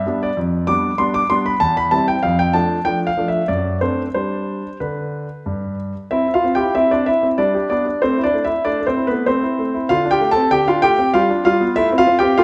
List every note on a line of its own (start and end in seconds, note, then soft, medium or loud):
0.00 0.21 E5 medium
0.06 0.28 G3 soft
0.06 0.29 B3 soft
0.06 0.29 D4 soft
0.23 0.37 D5 medium
0.37 0.67 F2 soft
0.67 0.90 G3 soft
0.67 0.90 B3 soft
0.67 0.90 D4 soft
0.67 0.98 D6 medium
0.98 1.21 G3 soft
0.98 1.21 B3 soft
0.98 1.21 D4 soft
0.98 1.14 C6 medium
1.14 1.30 D6 medium
1.30 1.52 G3 soft
1.30 1.52 B3 soft
1.30 1.53 D4 soft
1.30 1.45 C6 medium
1.46 1.61 B5 medium
1.60 1.91 E2 soft
1.60 1.76 A5 medium
1.77 1.92 B5 medium
1.91 2.14 G3 soft
1.91 2.14 C4 soft
1.91 2.15 E4 soft
1.91 2.07 A5 medium
2.08 2.23 G5 medium
2.23 2.53 F2 medium
2.23 2.38 F5 medium
2.39 2.54 G5 medium
2.53 2.77 F3 soft
2.53 2.77 A3 soft
2.53 2.77 D4 soft
2.53 2.85 A5 medium
2.85 3.08 F3 soft
2.85 3.08 A3 soft
2.85 3.09 D4 soft
2.85 2.98 G5 medium
3.07 3.28 F5 medium
3.17 3.40 F3 soft
3.17 3.41 A3 soft
3.17 3.41 D4 soft
3.28 3.47 E5 medium
3.48 3.81 F#2 soft
3.48 3.78 D5 medium
3.81 4.06 A3 soft
3.81 4.06 C4 soft
3.81 4.06 D4 soft
3.81 4.01 C5 medium
4.14 4.61 G3 soft
4.14 4.68 D4 soft
4.14 4.77 C5 medium
4.80 5.26 D3 soft
4.80 5.74 B4 soft
5.46 5.92 G2 soft
6.11 6.27 C4 soft
6.11 6.26 E4 medium
6.11 6.32 E5 medium
6.28 6.44 E4 soft
6.34 6.54 F4 medium
6.34 6.53 F5 medium
6.44 6.61 C4 soft
6.55 6.75 G4 soft
6.55 6.74 G5 medium
6.60 6.75 E4 soft
6.75 6.89 C4 soft
6.75 6.90 E4 medium
6.75 6.91 E5 medium
6.91 7.08 C4 soft
6.91 7.07 D4 soft
6.91 7.07 D5 medium
7.06 7.37 E4 soft
7.06 7.26 E5 medium
7.23 7.39 C4 soft
7.38 7.54 G3 soft
7.38 7.68 D4 medium
7.38 7.67 D5 medium
7.54 7.71 G4 soft
7.70 7.87 B3 soft
7.70 7.85 D4 medium
7.70 8.02 D5 medium
7.86 8.02 D4 soft
8.02 8.17 A3 soft
8.02 8.22 C4 medium
8.02 8.21 C5 medium
8.18 8.34 E4 soft
8.24 8.44 D4 medium
8.24 8.44 D5 medium
8.34 8.50 A3 soft
8.45 8.48 E4 medium
8.45 8.65 E5 medium
8.49 8.66 E4 soft
8.65 8.79 A3 soft
8.65 8.85 D4 medium
8.65 8.86 D5 medium
8.80 8.97 A3 soft
8.87 9.06 C4 medium
8.87 9.07 C5 medium
8.96 9.13 E4 soft
9.07 9.27 B3 soft
9.07 9.28 B4 medium
9.11 9.26 A3 soft
9.26 9.42 A3 soft
9.26 9.86 C4 medium
9.26 9.89 C5 medium
9.43 9.59 E4 soft
9.59 9.75 A3 soft
9.74 9.90 E4 soft
9.89 10.05 D3 soft
9.89 10.09 F4 medium
9.89 10.08 F5 medium
10.05 10.21 D4 soft
10.11 10.30 G4 medium
10.11 10.31 G5 medium
10.21 10.37 A3 soft
10.31 10.51 A4 medium
10.31 10.49 A5 medium
10.36 10.52 C4 soft
10.51 10.66 D3 soft
10.51 10.66 G4 medium
10.51 10.67 G5 medium
10.67 10.83 D4 soft
10.67 10.82 F4 medium
10.67 10.83 F5 medium
10.82 10.99 A3 soft
10.82 11.12 G4 medium
10.82 11.10 G5 medium
10.98 11.14 C4 soft
11.14 11.29 G3 medium
11.14 11.43 F4 medium
11.14 11.43 F5 medium
11.30 11.46 D4 soft
11.45 11.61 G3 soft
11.45 11.75 F4 medium
11.45 11.76 F5 medium
11.61 11.76 B3 soft
11.76 11.91 A3 medium
11.76 11.96 E4 medium
11.76 11.88 E5 medium
11.92 12.06 C4 soft
11.98 12.17 F4 medium
11.98 12.16 F5 medium
12.07 12.22 C4 soft
12.19 12.38 G4 medium
12.19 12.38 G5 medium
12.23 12.39 C4 soft
12.38 12.44 A3 medium
12.38 12.44 F4 medium
12.38 12.44 F5 medium